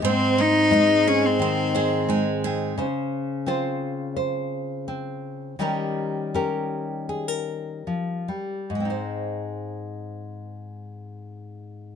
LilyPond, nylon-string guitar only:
\new Staff \with { instrumentName = "Nylon-string guitar" } { \time 4/4 \key aes \major \tempo 4 = 83 << { r4 ees'4. c''4 c'8 | c''4 <c' f' c''>4 c''4 c'4 | <g des' g' bes'>4 <des' g' bes'>4 aes'16 bes'4.~ bes'16 | <aes c' ees' c''>1 | } \\ { aes,4 aes4 ees4 aes4 | des1 | ees2. f8 g8 | aes,1 | } >> }